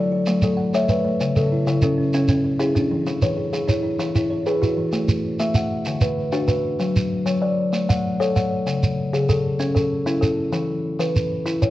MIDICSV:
0, 0, Header, 1, 4, 480
1, 0, Start_track
1, 0, Key_signature, 3, "major"
1, 0, Tempo, 311042
1, 1852, Time_signature, 12, 3, 24, 8
1, 18060, End_track
2, 0, Start_track
2, 0, Title_t, "Kalimba"
2, 0, Program_c, 0, 108
2, 0, Note_on_c, 0, 54, 75
2, 0, Note_on_c, 0, 69, 66
2, 0, Note_on_c, 0, 74, 61
2, 175, Note_off_c, 0, 54, 0
2, 417, Note_off_c, 0, 69, 0
2, 420, Note_on_c, 0, 57, 83
2, 656, Note_off_c, 0, 74, 0
2, 672, Note_on_c, 0, 69, 67
2, 896, Note_off_c, 0, 57, 0
2, 1147, Note_on_c, 0, 73, 83
2, 1151, Note_on_c, 0, 76, 76
2, 1379, Note_on_c, 0, 71, 69
2, 1382, Note_off_c, 0, 69, 0
2, 1619, Note_off_c, 0, 73, 0
2, 1860, Note_on_c, 0, 49, 87
2, 1861, Note_off_c, 0, 76, 0
2, 2096, Note_off_c, 0, 71, 0
2, 2103, Note_on_c, 0, 69, 69
2, 2336, Note_off_c, 0, 49, 0
2, 2580, Note_on_c, 0, 49, 88
2, 2580, Note_on_c, 0, 64, 68
2, 2812, Note_off_c, 0, 69, 0
2, 2831, Note_on_c, 0, 69, 65
2, 3056, Note_off_c, 0, 49, 0
2, 3296, Note_off_c, 0, 64, 0
2, 3312, Note_on_c, 0, 61, 86
2, 3521, Note_off_c, 0, 61, 0
2, 3540, Note_on_c, 0, 61, 69
2, 3541, Note_off_c, 0, 69, 0
2, 4004, Note_on_c, 0, 64, 78
2, 4005, Note_on_c, 0, 68, 74
2, 4246, Note_on_c, 0, 62, 61
2, 4256, Note_off_c, 0, 61, 0
2, 4488, Note_off_c, 0, 64, 0
2, 4729, Note_off_c, 0, 68, 0
2, 4732, Note_on_c, 0, 52, 75
2, 4970, Note_off_c, 0, 62, 0
2, 4975, Note_on_c, 0, 73, 73
2, 5212, Note_off_c, 0, 52, 0
2, 5447, Note_on_c, 0, 68, 59
2, 5452, Note_on_c, 0, 52, 74
2, 5671, Note_off_c, 0, 73, 0
2, 5689, Note_on_c, 0, 73, 61
2, 5932, Note_off_c, 0, 52, 0
2, 6163, Note_on_c, 0, 64, 83
2, 6170, Note_off_c, 0, 68, 0
2, 6394, Note_off_c, 0, 64, 0
2, 6411, Note_off_c, 0, 73, 0
2, 6412, Note_on_c, 0, 64, 66
2, 6889, Note_on_c, 0, 71, 67
2, 6892, Note_on_c, 0, 68, 78
2, 7124, Note_on_c, 0, 66, 63
2, 7133, Note_off_c, 0, 64, 0
2, 7373, Note_off_c, 0, 68, 0
2, 7601, Note_on_c, 0, 57, 79
2, 7611, Note_off_c, 0, 71, 0
2, 7849, Note_off_c, 0, 66, 0
2, 8087, Note_off_c, 0, 57, 0
2, 8328, Note_on_c, 0, 76, 72
2, 8335, Note_on_c, 0, 57, 83
2, 8571, Note_on_c, 0, 78, 63
2, 8814, Note_off_c, 0, 57, 0
2, 9051, Note_off_c, 0, 76, 0
2, 9060, Note_on_c, 0, 50, 76
2, 9290, Note_on_c, 0, 71, 73
2, 9292, Note_off_c, 0, 78, 0
2, 9537, Note_off_c, 0, 50, 0
2, 9763, Note_on_c, 0, 62, 74
2, 9763, Note_on_c, 0, 66, 85
2, 9978, Note_off_c, 0, 71, 0
2, 9996, Note_on_c, 0, 71, 72
2, 10248, Note_off_c, 0, 66, 0
2, 10488, Note_off_c, 0, 62, 0
2, 10490, Note_on_c, 0, 54, 83
2, 10725, Note_off_c, 0, 71, 0
2, 10972, Note_off_c, 0, 54, 0
2, 11204, Note_on_c, 0, 73, 65
2, 11208, Note_on_c, 0, 54, 85
2, 11449, Note_on_c, 0, 74, 72
2, 11691, Note_off_c, 0, 54, 0
2, 11928, Note_on_c, 0, 57, 78
2, 11929, Note_off_c, 0, 73, 0
2, 12172, Note_off_c, 0, 74, 0
2, 12178, Note_on_c, 0, 78, 71
2, 12411, Note_off_c, 0, 57, 0
2, 12651, Note_on_c, 0, 73, 92
2, 12655, Note_on_c, 0, 69, 73
2, 12880, Note_off_c, 0, 78, 0
2, 12898, Note_on_c, 0, 78, 69
2, 13133, Note_off_c, 0, 73, 0
2, 13371, Note_on_c, 0, 49, 82
2, 13375, Note_off_c, 0, 69, 0
2, 13616, Note_off_c, 0, 78, 0
2, 13853, Note_off_c, 0, 49, 0
2, 14090, Note_on_c, 0, 68, 77
2, 14091, Note_on_c, 0, 49, 86
2, 14332, Note_on_c, 0, 69, 70
2, 14573, Note_off_c, 0, 49, 0
2, 14804, Note_on_c, 0, 61, 86
2, 14813, Note_off_c, 0, 68, 0
2, 15019, Note_off_c, 0, 69, 0
2, 15037, Note_on_c, 0, 69, 69
2, 15290, Note_off_c, 0, 61, 0
2, 15523, Note_on_c, 0, 64, 84
2, 15530, Note_on_c, 0, 61, 73
2, 15736, Note_off_c, 0, 69, 0
2, 15754, Note_on_c, 0, 69, 70
2, 16010, Note_off_c, 0, 64, 0
2, 16239, Note_on_c, 0, 52, 89
2, 16253, Note_off_c, 0, 61, 0
2, 16485, Note_off_c, 0, 69, 0
2, 16728, Note_off_c, 0, 52, 0
2, 16963, Note_on_c, 0, 52, 80
2, 16972, Note_on_c, 0, 71, 73
2, 17450, Note_off_c, 0, 52, 0
2, 17679, Note_on_c, 0, 64, 82
2, 17694, Note_off_c, 0, 71, 0
2, 17933, Note_on_c, 0, 73, 74
2, 18060, Note_off_c, 0, 64, 0
2, 18060, Note_off_c, 0, 73, 0
2, 18060, End_track
3, 0, Start_track
3, 0, Title_t, "Kalimba"
3, 0, Program_c, 1, 108
3, 0, Note_on_c, 1, 66, 76
3, 0, Note_on_c, 1, 69, 68
3, 164, Note_off_c, 1, 66, 0
3, 172, Note_off_c, 1, 69, 0
3, 183, Note_on_c, 1, 66, 66
3, 412, Note_on_c, 1, 54, 69
3, 648, Note_on_c, 1, 69, 64
3, 652, Note_off_c, 1, 54, 0
3, 876, Note_on_c, 1, 78, 55
3, 897, Note_off_c, 1, 66, 0
3, 1131, Note_on_c, 1, 57, 70
3, 1348, Note_off_c, 1, 69, 0
3, 1366, Note_on_c, 1, 69, 65
3, 1591, Note_off_c, 1, 57, 0
3, 1604, Note_off_c, 1, 78, 0
3, 1610, Note_on_c, 1, 57, 79
3, 2089, Note_off_c, 1, 69, 0
3, 2091, Note_off_c, 1, 57, 0
3, 2094, Note_on_c, 1, 49, 88
3, 2338, Note_on_c, 1, 64, 60
3, 2573, Note_off_c, 1, 49, 0
3, 2817, Note_on_c, 1, 61, 81
3, 3039, Note_off_c, 1, 61, 0
3, 3055, Note_off_c, 1, 64, 0
3, 3057, Note_on_c, 1, 61, 66
3, 3292, Note_on_c, 1, 49, 67
3, 3516, Note_off_c, 1, 61, 0
3, 3535, Note_on_c, 1, 61, 64
3, 3772, Note_off_c, 1, 49, 0
3, 3773, Note_on_c, 1, 69, 61
3, 4000, Note_off_c, 1, 61, 0
3, 4018, Note_on_c, 1, 61, 71
3, 4247, Note_off_c, 1, 61, 0
3, 4265, Note_on_c, 1, 61, 64
3, 4493, Note_off_c, 1, 69, 0
3, 4493, Note_on_c, 1, 52, 75
3, 4951, Note_off_c, 1, 52, 0
3, 4969, Note_on_c, 1, 52, 80
3, 4970, Note_on_c, 1, 71, 72
3, 4979, Note_off_c, 1, 61, 0
3, 5197, Note_on_c, 1, 68, 63
3, 5451, Note_off_c, 1, 52, 0
3, 5673, Note_on_c, 1, 64, 80
3, 5692, Note_off_c, 1, 71, 0
3, 5887, Note_off_c, 1, 64, 0
3, 5905, Note_on_c, 1, 64, 67
3, 5925, Note_off_c, 1, 68, 0
3, 6157, Note_on_c, 1, 52, 70
3, 6379, Note_off_c, 1, 64, 0
3, 6397, Note_on_c, 1, 64, 64
3, 6638, Note_on_c, 1, 73, 57
3, 6645, Note_off_c, 1, 52, 0
3, 6861, Note_off_c, 1, 64, 0
3, 6880, Note_on_c, 1, 64, 76
3, 7112, Note_off_c, 1, 64, 0
3, 7131, Note_on_c, 1, 64, 70
3, 7359, Note_on_c, 1, 52, 73
3, 7366, Note_off_c, 1, 73, 0
3, 7846, Note_off_c, 1, 52, 0
3, 7852, Note_off_c, 1, 64, 0
3, 18060, End_track
4, 0, Start_track
4, 0, Title_t, "Shekere"
4, 404, Note_on_c, 9, 82, 58
4, 558, Note_off_c, 9, 82, 0
4, 646, Note_on_c, 9, 82, 73
4, 800, Note_off_c, 9, 82, 0
4, 1141, Note_on_c, 9, 82, 53
4, 1296, Note_off_c, 9, 82, 0
4, 1366, Note_on_c, 9, 82, 68
4, 1521, Note_off_c, 9, 82, 0
4, 1857, Note_on_c, 9, 82, 55
4, 2011, Note_off_c, 9, 82, 0
4, 2096, Note_on_c, 9, 82, 71
4, 2250, Note_off_c, 9, 82, 0
4, 2579, Note_on_c, 9, 82, 55
4, 2734, Note_off_c, 9, 82, 0
4, 2808, Note_on_c, 9, 82, 70
4, 2962, Note_off_c, 9, 82, 0
4, 3297, Note_on_c, 9, 82, 62
4, 3451, Note_off_c, 9, 82, 0
4, 3526, Note_on_c, 9, 82, 81
4, 3681, Note_off_c, 9, 82, 0
4, 4013, Note_on_c, 9, 82, 49
4, 4168, Note_off_c, 9, 82, 0
4, 4260, Note_on_c, 9, 82, 61
4, 4414, Note_off_c, 9, 82, 0
4, 4732, Note_on_c, 9, 82, 45
4, 4886, Note_off_c, 9, 82, 0
4, 4968, Note_on_c, 9, 82, 72
4, 5122, Note_off_c, 9, 82, 0
4, 5458, Note_on_c, 9, 82, 50
4, 5612, Note_off_c, 9, 82, 0
4, 5690, Note_on_c, 9, 82, 72
4, 5845, Note_off_c, 9, 82, 0
4, 6168, Note_on_c, 9, 82, 51
4, 6322, Note_off_c, 9, 82, 0
4, 6410, Note_on_c, 9, 82, 75
4, 6565, Note_off_c, 9, 82, 0
4, 6889, Note_on_c, 9, 82, 45
4, 7043, Note_off_c, 9, 82, 0
4, 7138, Note_on_c, 9, 82, 59
4, 7292, Note_off_c, 9, 82, 0
4, 7598, Note_on_c, 9, 82, 59
4, 7753, Note_off_c, 9, 82, 0
4, 7843, Note_on_c, 9, 82, 89
4, 7998, Note_off_c, 9, 82, 0
4, 8327, Note_on_c, 9, 82, 60
4, 8481, Note_off_c, 9, 82, 0
4, 8557, Note_on_c, 9, 82, 96
4, 8711, Note_off_c, 9, 82, 0
4, 9033, Note_on_c, 9, 82, 63
4, 9187, Note_off_c, 9, 82, 0
4, 9278, Note_on_c, 9, 82, 87
4, 9432, Note_off_c, 9, 82, 0
4, 9762, Note_on_c, 9, 82, 60
4, 9916, Note_off_c, 9, 82, 0
4, 10001, Note_on_c, 9, 82, 76
4, 10155, Note_off_c, 9, 82, 0
4, 10490, Note_on_c, 9, 82, 55
4, 10644, Note_off_c, 9, 82, 0
4, 10746, Note_on_c, 9, 82, 74
4, 10900, Note_off_c, 9, 82, 0
4, 11219, Note_on_c, 9, 82, 61
4, 11374, Note_off_c, 9, 82, 0
4, 11937, Note_on_c, 9, 82, 58
4, 12091, Note_off_c, 9, 82, 0
4, 12189, Note_on_c, 9, 82, 88
4, 12343, Note_off_c, 9, 82, 0
4, 12672, Note_on_c, 9, 82, 52
4, 12826, Note_off_c, 9, 82, 0
4, 12900, Note_on_c, 9, 82, 74
4, 13055, Note_off_c, 9, 82, 0
4, 13377, Note_on_c, 9, 82, 58
4, 13531, Note_off_c, 9, 82, 0
4, 13622, Note_on_c, 9, 82, 77
4, 13776, Note_off_c, 9, 82, 0
4, 14104, Note_on_c, 9, 82, 54
4, 14258, Note_off_c, 9, 82, 0
4, 14335, Note_on_c, 9, 82, 80
4, 14489, Note_off_c, 9, 82, 0
4, 14809, Note_on_c, 9, 82, 64
4, 14963, Note_off_c, 9, 82, 0
4, 15058, Note_on_c, 9, 82, 77
4, 15212, Note_off_c, 9, 82, 0
4, 15536, Note_on_c, 9, 82, 50
4, 15691, Note_off_c, 9, 82, 0
4, 15779, Note_on_c, 9, 82, 68
4, 15933, Note_off_c, 9, 82, 0
4, 16246, Note_on_c, 9, 82, 56
4, 16400, Note_off_c, 9, 82, 0
4, 16974, Note_on_c, 9, 82, 58
4, 17128, Note_off_c, 9, 82, 0
4, 17220, Note_on_c, 9, 82, 75
4, 17374, Note_off_c, 9, 82, 0
4, 17690, Note_on_c, 9, 82, 67
4, 17844, Note_off_c, 9, 82, 0
4, 17936, Note_on_c, 9, 82, 84
4, 18060, Note_off_c, 9, 82, 0
4, 18060, End_track
0, 0, End_of_file